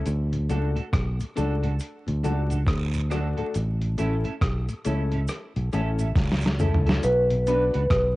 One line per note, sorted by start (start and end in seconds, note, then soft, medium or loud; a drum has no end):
0.06 0.47 D2 medium
0.06 closed hi-hat medium
0.06 cabasa medium
0.32 0.38 D2 medium
0.32 0.38 A2 medium
0.32 closed hi-hat medium
0.49 0.75 C#2 medium
0.49 0.58 F#3 medium
0.49 0.58 A3 medium
0.49 0.76 A3 medium
0.49 0.58 D4 medium
0.49 0.65 D4 medium
0.49 0.76 D4 medium
0.49 0.66 F#4 medium
0.49 0.76 F#4 medium
0.49 0.66 A4 medium
0.49 0.77 A4 medium
0.49 closed hi-hat medium
0.49 cabasa soft
0.76 0.82 D2 medium
0.76 0.82 A2 medium
0.76 0.84 D4 soft
0.76 0.84 F#4 medium
0.76 0.84 A4 medium
0.76 closed hi-hat soft
0.93 1.18 B1 medium
0.93 kick loud
0.93 cross-stick loud
0.93 closed hi-hat medium
1.19 1.25 D2 soft
1.19 1.25 A2 medium
1.19 closed hi-hat medium
1.19 cabasa soft
1.35 1.78 C#2 medium
1.35 1.45 F#3 medium
1.35 1.45 A3 medium
1.35 1.63 A3 medium
1.35 1.52 D4 medium
1.35 1.45 D4 medium
1.35 1.63 D4 medium
1.35 1.53 F#4 medium
1.35 1.64 F#4 medium
1.35 1.53 A4 medium
1.35 1.64 A4 medium
1.35 closed hi-hat medium
1.35 cabasa medium
1.63 1.69 D2 medium
1.63 1.69 A2 soft
1.63 1.71 D4 medium
1.63 1.71 F#4 medium
1.63 1.71 A4 medium
1.63 closed hi-hat soft
1.79 closed hi-hat medium
1.79 cabasa medium
2.06 2.12 D2 medium
2.06 2.23 D2 medium
2.06 2.12 A2 soft
2.06 closed hi-hat soft
2.23 2.65 C#2 medium
2.23 2.33 F#3 medium
2.23 2.33 A3 medium
2.23 2.50 A3 medium
2.23 2.39 D4 medium
2.23 2.33 D4 medium
2.23 2.51 D4 medium
2.23 2.40 F#4 medium
2.23 2.51 F#4 medium
2.23 2.40 A4 medium
2.23 2.51 A4 medium
2.23 closed hi-hat medium
2.23 cabasa soft
2.50 2.56 D2 medium
2.50 2.56 A2 medium
2.50 2.59 D4 medium
2.50 2.58 F#4 medium
2.50 2.58 A4 medium
2.50 closed hi-hat soft
2.50 cabasa medium
2.67 3.33 D2 medium
2.67 kick loud
2.67 cross-stick loud
2.67 closed hi-hat medium
2.67 long guiro medium
2.94 3.00 D2 medium
2.94 3.00 A2 medium
2.94 closed hi-hat soft
2.94 cabasa medium
3.10 3.20 F#3 medium
3.10 3.36 A3 medium
3.10 3.20 A3 medium
3.10 3.26 D4 medium
3.10 3.36 D4 medium
3.10 3.20 D4 medium
3.10 3.27 F#4 medium
3.10 3.37 F#4 medium
3.10 3.27 A4 medium
3.10 3.37 A4 medium
3.10 cross-stick medium
3.10 closed hi-hat medium
3.10 cabasa medium
3.37 3.43 D2 medium
3.37 3.44 A2 medium
3.37 3.55 A3 medium
3.37 3.55 D4 medium
3.37 3.46 D4 medium
3.37 3.45 F#4 medium
3.37 3.55 F#4 medium
3.37 3.45 A4 medium
3.37 3.55 A4 medium
3.37 closed hi-hat soft
3.54 3.96 A1 medium
3.54 closed hi-hat medium
3.54 cabasa medium
3.82 3.87 A2 medium
3.82 closed hi-hat soft
3.98 4.24 A1 medium
3.98 4.07 E3 medium
3.98 4.25 A3 medium
3.98 4.07 A3 medium
3.98 4.14 C#4 medium
3.98 4.25 C#4 medium
3.98 4.08 C#4 medium
3.98 4.14 E4 medium
3.98 4.25 E4 medium
3.98 4.14 A4 medium
3.98 4.25 A4 medium
3.98 closed hi-hat medium
3.98 cabasa soft
4.25 4.31 A2 medium
4.25 4.33 C#4 soft
4.25 4.33 E4 medium
4.25 4.33 A4 medium
4.25 closed hi-hat soft
4.42 4.67 B1 medium
4.42 kick loud
4.42 cross-stick loud
4.42 closed hi-hat medium
4.69 4.75 A2 medium
4.69 closed hi-hat medium
4.69 cabasa soft
4.85 5.27 C#2 medium
4.85 4.95 E3 medium
4.85 5.12 A3 medium
4.85 4.95 A3 medium
4.85 5.01 C#4 medium
4.85 5.12 C#4 medium
4.85 4.95 C#4 medium
4.85 5.01 E4 medium
4.85 5.12 E4 medium
4.85 5.02 A4 medium
4.85 5.13 A4 medium
4.85 closed hi-hat medium
4.85 cabasa medium
5.12 5.18 A2 medium
5.12 5.20 C#4 medium
5.12 5.20 E4 medium
5.12 5.20 A4 medium
5.12 closed hi-hat soft
5.28 cross-stick medium
5.28 closed hi-hat medium
5.28 cabasa medium
5.56 5.72 B1 medium
5.56 5.62 A2 medium
5.56 closed hi-hat soft
5.73 6.14 A1 medium
5.73 5.82 E3 medium
5.73 5.99 A3 medium
5.73 5.82 A3 medium
5.73 5.88 C#4 medium
5.73 5.82 C#4 medium
5.73 6.00 C#4 medium
5.73 5.89 E4 medium
5.73 6.00 E4 medium
5.73 6.00 A4 loud
5.73 5.89 A4 medium
5.73 closed hi-hat medium
5.73 cabasa soft
5.99 6.05 A2 medium
5.99 6.08 C#4 soft
5.99 6.07 E4 medium
5.99 6.07 A4 medium
5.99 closed hi-hat soft
5.99 cabasa medium
6.16 6.99 C#2 medium
6.16 kick loud
6.16 snare medium
6.16 closed hi-hat medium
6.16 long guiro medium
6.32 snare medium
6.41 6.49 A2 medium
6.41 closed hi-hat medium
6.41 cabasa soft
6.46 snare medium
6.59 6.69 E3 medium
6.59 6.85 A3 medium
6.59 6.69 A3 medium
6.59 6.75 C#4 medium
6.59 6.85 C#4 medium
6.59 6.69 C#4 medium
6.59 6.76 E4 medium
6.59 6.86 E4 medium
6.59 6.76 A4 medium
6.59 6.86 A4 loud
6.59 closed hi-hat medium
6.59 mid tom medium
6.59 cabasa medium
6.74 floor tom medium
6.86 7.03 A3 medium
6.86 7.04 C#4 medium
6.86 6.95 C#4 soft
6.86 6.94 E4 medium
6.86 7.04 E4 medium
6.86 6.94 A4 medium
6.86 7.04 A4 medium
6.86 snare medium
6.86 closed hi-hat soft
7.03 7.70 B1 loud
7.03 8.16 B4 loud
7.03 closed hi-hat medium
7.03 cabasa medium
7.30 7.36 B2 medium
7.30 closed hi-hat medium
7.47 7.56 F#3 medium
7.47 7.73 B3 medium
7.47 7.56 B3 medium
7.47 7.63 D4 medium
7.47 7.74 D4 medium
7.47 7.56 D4 medium
7.47 7.63 F#4 medium
7.47 7.74 F#4 medium
7.47 7.74 B4 medium
7.47 7.63 B4 medium
7.47 closed hi-hat medium
7.47 cabasa soft
7.74 7.90 C#2 medium
7.74 7.82 D4 medium
7.74 7.82 F#4 medium
7.74 7.81 B4 medium
7.74 closed hi-hat soft
7.90 8.16 B1 medium
7.90 kick loud
7.90 cross-stick loud
7.90 closed hi-hat loud